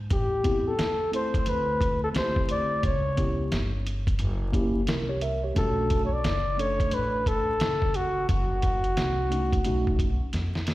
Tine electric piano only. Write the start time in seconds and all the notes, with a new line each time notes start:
0.43 B3 C4 E4 G4
1.12 A3 C4 E4 A4
2.13 A3 C4 E4 G4
3.17 B3 C#4 E4 G4
4.52 A#3 C#4 E4 G4
4.89 E4 A#4
5.09 G4 C#5
5.22 A#4 E5
5.44 G4 C#5
5.55 A3 C#4 D4 F#4
6.57 A3 C#4 D4 A4
9.29 A3 C#4 D#4 F#4
9.64 A3 C#4 D#4 F#4